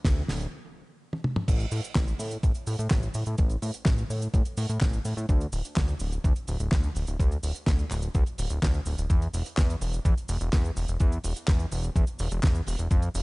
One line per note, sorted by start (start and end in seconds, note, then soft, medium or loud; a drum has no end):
0.05 0.23 D2 medium
0.05 kick loud
0.05 snare loud
0.05 closed hi-hat medium
0.28 0.47 D1 medium
0.28 snare medium
0.28 open hi-hat medium
0.41 closed hi-hat medium
1.13 high tom medium
1.24 mid tom medium
1.36 mid tom medium
1.48 1.66 A1 loud
1.48 kick loud
1.48 closed hi-hat medium
1.48 crash loud
1.48 cabasa medium
1.60 closed hi-hat medium
1.60 cabasa soft
1.71 1.81 A2 medium
1.71 open hi-hat loud
1.71 cabasa medium
1.84 closed hi-hat medium
1.84 cabasa soft
1.95 2.14 A1 medium
1.95 kick loud
1.95 snare loud
1.95 clap loud
1.95 closed hi-hat medium
1.95 cabasa medium
2.07 closed hi-hat medium
2.07 cabasa soft
2.19 2.37 A2 medium
2.19 open hi-hat loud
2.19 cabasa medium
2.31 closed hi-hat medium
2.31 cabasa soft
2.43 2.52 A1 loud
2.43 kick loud
2.43 closed hi-hat medium
2.43 cabasa medium
2.54 closed hi-hat medium
2.54 cabasa soft
2.67 2.76 A2 loud
2.67 open hi-hat loud
2.67 cabasa medium
2.79 2.88 A2 loud
2.79 closed hi-hat medium
2.79 cabasa soft
2.90 3.09 A1 loud
2.90 kick loud
2.90 snare loud
2.90 clap medium
2.90 closed hi-hat medium
2.90 cabasa medium
3.02 closed hi-hat medium
3.02 cabasa soft
3.14 3.24 A2 medium
3.14 open hi-hat medium
3.14 cabasa medium
3.26 3.36 A2 medium
3.26 closed hi-hat medium
3.26 cabasa soft
3.38 3.57 A1 loud
3.38 kick loud
3.38 closed hi-hat medium
3.38 cabasa medium
3.49 closed hi-hat medium
3.49 cabasa soft
3.62 3.71 A2 medium
3.62 open hi-hat loud
3.62 cabasa medium
3.74 closed hi-hat medium
3.74 cabasa medium
3.85 4.04 A1 medium
3.85 kick loud
3.85 snare loud
3.85 clap medium
3.85 closed hi-hat medium
3.85 cabasa soft
3.98 closed hi-hat medium
3.98 cabasa soft
4.10 4.28 A2 medium
4.10 open hi-hat medium
4.10 cabasa medium
4.22 closed hi-hat medium
4.22 cabasa soft
4.34 4.43 A1 loud
4.34 kick loud
4.34 closed hi-hat medium
4.34 cabasa medium
4.45 closed hi-hat medium
4.45 cabasa soft
4.57 4.67 A2 loud
4.57 open hi-hat loud
4.57 cabasa medium
4.69 4.78 A2 medium
4.69 closed hi-hat medium
4.69 cabasa soft
4.81 4.99 A1 loud
4.81 kick loud
4.81 snare loud
4.81 clap medium
4.81 closed hi-hat medium
4.81 cabasa soft
4.93 closed hi-hat medium
4.93 cabasa soft
5.05 5.14 A2 medium
5.05 open hi-hat loud
5.05 cabasa medium
5.17 5.26 A2 medium
5.17 closed hi-hat medium
5.17 cabasa soft
5.29 5.47 D2 loud
5.29 kick loud
5.29 closed hi-hat medium
5.29 cabasa medium
5.41 closed hi-hat medium
5.41 cabasa soft
5.53 5.62 D1 medium
5.53 open hi-hat loud
5.53 cabasa medium
5.65 closed hi-hat medium
5.65 cabasa medium
5.76 5.95 D2 medium
5.76 kick loud
5.76 snare loud
5.76 clap medium
5.76 closed hi-hat medium
5.76 cabasa medium
5.88 closed hi-hat medium
5.88 cabasa soft
6.00 6.18 D1 medium
6.00 open hi-hat loud
6.00 cabasa medium
6.12 closed hi-hat soft
6.12 cabasa soft
6.24 6.33 D2 loud
6.24 kick loud
6.24 closed hi-hat medium
6.24 cabasa medium
6.36 closed hi-hat medium
6.36 cabasa soft
6.47 6.57 D1 loud
6.47 open hi-hat loud
6.47 cabasa medium
6.60 6.69 D1 medium
6.60 closed hi-hat medium
6.60 cabasa soft
6.72 6.90 D2 loud
6.72 kick loud
6.72 snare loud
6.72 clap medium
6.72 closed hi-hat medium
6.72 cabasa medium
6.83 closed hi-hat soft
6.83 cabasa soft
6.95 7.05 D1 medium
6.95 open hi-hat medium
6.95 cabasa medium
7.07 7.17 D1 medium
7.07 closed hi-hat medium
7.07 cabasa soft
7.19 7.38 D2 loud
7.19 kick loud
7.19 closed hi-hat medium
7.19 cabasa medium
7.31 closed hi-hat medium
7.31 cabasa soft
7.43 7.52 D1 medium
7.43 open hi-hat loud
7.43 cabasa medium
7.55 closed hi-hat medium
7.55 cabasa soft
7.67 7.85 D2 medium
7.67 kick loud
7.67 snare loud
7.67 clap medium
7.67 closed hi-hat medium
7.67 cabasa medium
7.79 closed hi-hat soft
7.79 cabasa soft
7.90 8.09 D1 medium
7.90 clap medium
7.90 open hi-hat loud
7.90 cabasa medium
8.02 closed hi-hat medium
8.02 cabasa soft
8.15 8.24 D2 loud
8.15 kick loud
8.15 closed hi-hat medium
8.15 cabasa medium
8.26 closed hi-hat medium
8.26 cabasa soft
8.38 8.48 D1 loud
8.38 open hi-hat loud
8.38 cabasa medium
8.50 8.59 D1 loud
8.50 closed hi-hat medium
8.50 cabasa medium
8.62 8.80 D2 loud
8.62 kick loud
8.62 snare loud
8.62 clap medium
8.62 closed hi-hat medium
8.62 cabasa medium
8.74 closed hi-hat medium
8.74 cabasa soft
8.86 8.95 D1 medium
8.86 open hi-hat medium
8.86 cabasa medium
8.98 9.07 D1 medium
8.98 closed hi-hat medium
8.98 cabasa soft
9.10 9.28 E2 loud
9.10 kick loud
9.10 closed hi-hat medium
9.10 cabasa medium
9.22 closed hi-hat medium
9.22 cabasa soft
9.34 9.43 E1 medium
9.34 open hi-hat loud
9.34 cabasa medium
9.46 closed hi-hat medium
9.46 cabasa soft
9.57 9.76 E2 medium
9.57 kick loud
9.57 snare loud
9.57 clap medium
9.57 closed hi-hat medium
9.57 cabasa medium
9.70 closed hi-hat medium
9.70 cabasa soft
9.81 9.99 E1 medium
9.81 open hi-hat loud
9.81 cabasa medium
9.93 closed hi-hat soft
9.93 cabasa soft
10.05 10.14 E2 loud
10.05 kick loud
10.05 closed hi-hat medium
10.05 cabasa medium
10.17 closed hi-hat medium
10.17 cabasa soft
10.29 10.38 E1 loud
10.29 open hi-hat loud
10.29 cabasa medium
10.41 10.50 E1 loud
10.41 closed hi-hat medium
10.41 cabasa soft
10.53 10.71 E2 loud
10.53 kick loud
10.53 snare loud
10.53 clap medium
10.53 closed hi-hat medium
10.53 cabasa medium
10.64 closed hi-hat medium
10.64 cabasa soft
10.77 10.86 E1 medium
10.77 open hi-hat medium
10.77 cabasa medium
10.88 10.97 E1 medium
10.88 closed hi-hat medium
10.88 cabasa soft
11.00 11.18 E2 loud
11.00 kick loud
11.00 closed hi-hat medium
11.00 cabasa medium
11.12 closed hi-hat medium
11.12 cabasa soft
11.24 11.33 E1 medium
11.24 open hi-hat loud
11.24 cabasa medium
11.36 closed hi-hat medium
11.36 cabasa soft
11.48 11.66 E2 medium
11.48 kick loud
11.48 snare loud
11.48 clap medium
11.48 closed hi-hat medium
11.48 cabasa medium
11.59 closed hi-hat medium
11.59 cabasa soft
11.72 11.90 E1 medium
11.72 open hi-hat loud
11.72 cabasa medium
11.83 closed hi-hat medium
11.83 cabasa soft
11.96 12.05 E2 loud
11.96 kick loud
11.96 closed hi-hat medium
11.96 cabasa medium
12.07 closed hi-hat medium
12.07 cabasa soft
12.19 12.29 E1 loud
12.19 open hi-hat loud
12.19 cabasa medium
12.31 12.40 E1 loud
12.31 closed hi-hat medium
12.31 cabasa medium
12.43 12.61 E2 loud
12.43 kick loud
12.43 snare loud
12.43 clap medium
12.43 closed hi-hat medium
12.43 cabasa medium
12.55 closed hi-hat medium
12.55 cabasa soft
12.67 12.76 E1 medium
12.67 open hi-hat loud
12.67 cabasa medium
12.79 12.88 E1 medium
12.79 closed hi-hat medium
12.79 cabasa soft
12.91 13.09 F2 loud
12.91 kick loud
12.91 closed hi-hat medium
12.91 cabasa medium
13.02 closed hi-hat medium
13.02 cabasa soft
13.15 13.23 F1 medium
13.15 open hi-hat loud
13.15 cabasa medium